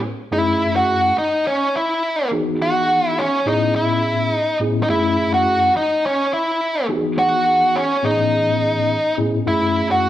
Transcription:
0.31 F#2 A3 C#4 E4 G#4
0.76 F#4
1.18 D#4
1.47 C#4
1.76 E4
2.31 E3 B3 D#4 F#4 G#4
2.62 F#4
3.07 E4
3.18 C#4
3.46 A2 B3 C#4 D#4 E4 G#4
3.76 E4
4.31 D#4
4.60 A2 B3 C#4 E4 G#4
4.83 D#4
4.89 F#2 A3 C#4 E4 G#4
5.34 F#4
5.77 D#4
6.05 C#4
6.33 E4
6.88 E3 B3 D#4 F#4 G4
6.96 G#4
7.19 F#4
7.76 C#4
8.03 A2 E3 B3 C#4 D#4 G#4
9.17 A2 B3 C#4 E4 G#4
9.46 F#2 A3 C#4 E4 G#4
9.91 F#4

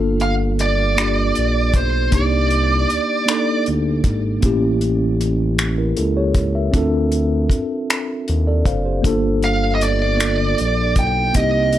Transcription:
Already playing: G1 A#3 D4 F4 A4
0.20 F5, closed hi-hat
0.59 D5, closed hi-hat
0.96 A#3 D4 F4 G4, finger snap, closed hi-hat
1.35 A#1, closed hi-hat
1.73 B1 C5, kick, closed hi-hat
2.11 C2 A#3 D4 D#4 D5, kick, closed hi-hat
2.15 G4
2.50 closed hi-hat
2.90 D2, closed hi-hat
3.26 A#3 D4 D#4, finger snap, closed hi-hat
3.30 A4
3.66 D2, closed hi-hat
4.04 G#1, kick, closed hi-hat
4.41 A1 A#3 C#4 E4, kick, closed hi-hat
4.46 G4
4.81 closed hi-hat
5.21 closed hi-hat
5.58 finger snap, closed hi-hat
5.78 E4 A#4
5.97 C#2 E4 A4, closed hi-hat
6.17 G4 C#5
6.34 C#2, kick, closed hi-hat
6.55 A#4 E5
6.72 D2 C4 D4 F4, kick, closed hi-hat
6.76 A4
7.12 closed hi-hat
7.50 D#2, kick, closed hi-hat
7.90 finger snap, closed hi-hat
8.28 D#2, closed hi-hat
8.47 A4 D5
8.65 F#1 C5 F5, kick, closed hi-hat
8.85 G4 C5
9.02 G1 A#3 D4 F4, kick, closed hi-hat
9.06 A4
9.43 F5, closed hi-hat
9.75 D#5
9.81 D5, closed hi-hat
10.17 A#3 D4 F4, finger snap, closed hi-hat
10.21 A4
10.58 A#1, closed hi-hat
10.96 B1 G5, kick, closed hi-hat
11.33 C2 A#3 C4 D#4 G4 D#5, kick, closed hi-hat
11.73 closed hi-hat

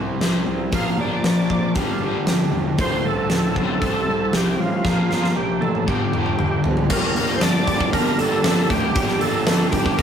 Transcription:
Already playing: C2 C3 G3 C4 E4 G4 C5
0.20 C2 C3 G3 C4, snare, open hi-hat
0.46 C2 C3 G3
0.72 A#1 A#2 F3 A#3 D4 F4 A#4 F5, kick, open hi-hat
0.98 G1 A#2 F3 A#3 D5
1.13 D5
1.24 A#1 A#2 F3 D5, snare, open hi-hat
1.50 A#1 A#2 F3 D5, kick
1.74 G1 G2 D3 G3 A#3 D4 G4, kick, open hi-hat
1.91 F4
2.00 G1 G2 D3 G3 G4
2.26 G1 G2 D3 G4, snare, open hi-hat
2.52 E1 G2 D3
2.78 D1 D2 A2 D3 A3 C4 F4 C5, kick, open hi-hat
3.03 C2 D2 A2 A4
3.18 A4
3.29 D1 D2 A2, snare, open hi-hat
3.55 B1 D2 A2 D3 A4, kick
3.71 A4
3.80 C2 C3 G3 C4 E4 G4 C5, kick, open hi-hat
4.07 C2 C3 G3
4.33 C2 C3 G3 C4 G4, snare, open hi-hat
4.59 A1 C3 G3 F4
4.84 A#1 A#2 F3 A#3 D4 F4 A#4, kick, snare
5.10 G1 A#2 F3 A#3, snare
5.24 snare
5.36 A#1 A#2 F3 G4, high tom
5.61 A1 A#2 F3 A4, high tom
5.75 mid tom
5.86 G1 G2 D3 G3 A#3 D4 G4, kick, mid tom
6.12 G1 G2 D3 G3, mid tom
6.26 mid tom
6.38 G1 G2 D3, mid tom
6.64 G1 G2 D3, floor tom
6.77 floor tom
6.89 G1 G2 D3 G3 A#3 D4 G4 A#4 D5, kick, crash
7.16 G1 A#3, open hi-hat
7.36 C5
7.41 G1 D4 D5, snare, open hi-hat
7.67 G1 G4, kick, open hi-hat
7.81 kick
7.92 G1 G2 D3 G3 A#3 D4 G4 A#4, kick, open hi-hat
8.18 G1 A#3 A4, open hi-hat
8.44 G1 D4, snare, open hi-hat
8.70 D2 G4, kick, open hi-hat
8.94 G1 G2 D3 G3 A#3 D4 G4, kick, open hi-hat
9.09 snare
9.19 G1 A#3 A4, open hi-hat
9.46 G1 D4, snare, open hi-hat
9.71 G4, kick, open hi-hat
9.86 kick
9.97 G1 G2 D3 G3 D4 A#4, kick, open hi-hat

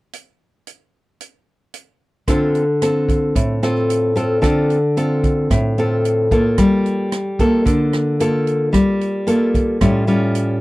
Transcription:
0.13 closed hi-hat
0.67 closed hi-hat
1.20 closed hi-hat
1.74 closed hi-hat
2.28 D3 C4 F4 A4, kick, cross-stick, closed hi-hat
2.55 closed hi-hat
2.82 C4 F4 A4, cross-stick, closed hi-hat
3.09 kick, closed hi-hat
3.36 A2, kick, closed hi-hat
3.63 C4 F4 A4, cross-stick, closed hi-hat
3.90 closed hi-hat
4.16 C4 F4 A4, closed hi-hat
4.42 D3 C4 F4 A4, kick, cross-stick, closed hi-hat
4.70 closed hi-hat
4.97 C4 F4 A4, closed hi-hat
5.24 kick, closed hi-hat
5.50 A2, kick, cross-stick, closed hi-hat
5.78 C4 F4 A4, closed hi-hat
6.05 closed hi-hat
6.31 A#3 F4 A4, kick, closed hi-hat
6.58 G3, kick, cross-stick, closed hi-hat
6.86 closed hi-hat
7.12 cross-stick, closed hi-hat
7.39 A#3 F4 A4, kick, closed hi-hat
7.65 D3, kick, closed hi-hat
7.93 cross-stick, closed hi-hat
8.20 A#3 F4 A4, closed hi-hat
8.47 closed hi-hat
8.73 G3, kick, cross-stick, closed hi-hat
9.01 closed hi-hat
9.27 A#3 F4 A4, closed hi-hat
9.54 kick, closed hi-hat
9.81 A2 G3 C#4 F4, kick, cross-stick, closed hi-hat
10.07 G3 C#4 F4, closed hi-hat
10.35 closed hi-hat

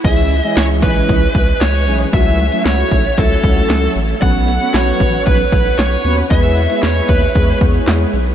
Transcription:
0.04 C#2 E3 G#3 C#4 E4 G#4 E5, kick, closed hi-hat, crash
0.31 closed hi-hat
0.44 E3 G#3 C#4 E4 G#4 D#5, closed hi-hat
0.57 C#2 C#5, snare, clap, closed hi-hat
0.83 B1 B4, kick, closed hi-hat
0.96 closed hi-hat
1.09 C#2, kick, closed hi-hat
1.35 C#2, kick, closed hi-hat
1.48 closed hi-hat
1.61 C#2 C#5, snare, clap, closed hi-hat
1.87 B1 E3 G#3 C#4 E4 G#4, open hi-hat
2.00 closed hi-hat
2.13 C#2 F#3 A3 C#4 E4 F#4 E5, kick, closed hi-hat
2.39 closed hi-hat
2.52 F#3 A3 C#4 E4 F#4, closed hi-hat
2.65 C#2 C#5, snare, clap, closed hi-hat
2.91 B1, kick, closed hi-hat
3.05 closed hi-hat
3.17 C#2 F#3 A3 C#4 E4 F#4 A4, kick, closed hi-hat
3.44 C#2, kick, closed hi-hat
3.57 closed hi-hat
3.70 C#2, snare, clap, closed hi-hat
3.96 A1, open hi-hat
4.09 closed hi-hat
4.22 B1 F#3 B3 C#4 F#4 B4 F#5, kick, closed hi-hat
4.48 closed hi-hat
4.61 F#3 B3 C#4 F#4 B4, closed hi-hat
4.74 B1 C#5, snare, clap, closed hi-hat
5.00 A1, kick, closed hi-hat
5.13 closed hi-hat
5.26 B1 B4, kick, closed hi-hat
5.52 B1, kick, closed hi-hat
5.65 closed hi-hat
5.78 B1 C#5, snare, clap, closed hi-hat
6.05 D#2 F#3 B3 C#4 F#4 B4, open hi-hat
6.18 closed hi-hat
6.30 E2 G#3 B3 E4 G#4 B4 E5, kick, closed hi-hat
6.57 closed hi-hat
6.70 G#3 B3 E4 G#4 B4, closed hi-hat
6.83 E2 C#5, snare, clap, closed hi-hat
7.09 D#2 B4, kick, closed hi-hat
7.22 closed hi-hat
7.35 E2 G#3 B3 E4 G#4 C#5, kick, closed hi-hat
7.61 E2, kick, closed hi-hat
7.74 closed hi-hat
7.87 E2, snare, clap, closed hi-hat
8.13 B1, open hi-hat
8.27 closed hi-hat

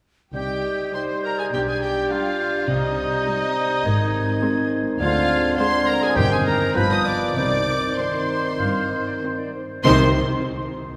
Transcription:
0.34 C2 C3 G3 D#4 G4 D#5 G5 G6
0.94 G3 D#4 C5 C6
1.24 A#4 A#5
1.38 G#4 G#5
1.52 B1 B2 G3 D4 G4 D5 G5
1.67 G#4 G#5
1.81 G4 G5
2.11 G3 D4 F4 F5
2.69 C2 C3 G3 C4 D#4 C5 D#5
3.27 G3 C4
3.85 G#1 G#2 D#3 G#3 C4 G#6
4.43 G#3 C4
5.00 D2 D3 G#3 C4 F4 C5 F5 G#6
5.58 D3 G#3 C4 C5 C6 G#6
5.87 A#4 A#5
6.01 G#4 G#5
6.15 G1 G2 D#3 C4 G4 C5 G5 G6
6.30 G#4 G#5
6.45 A#4 A#5
6.74 G1 G2 F3 B3 B4 B5 G6
6.89 D#5 D#6
7.04 D5 D6
7.35 C2 C3 D#3 C4 C5 D5 D6 G6
7.97 D#3 C4 C5 C6 G6
8.59 G1 G2 F5
8.91 D#5
9.07 D5
9.22 D#3 C4 C5
9.38 D5
9.53 C5
9.84 C2 C3 D#3 C4 C5 C6

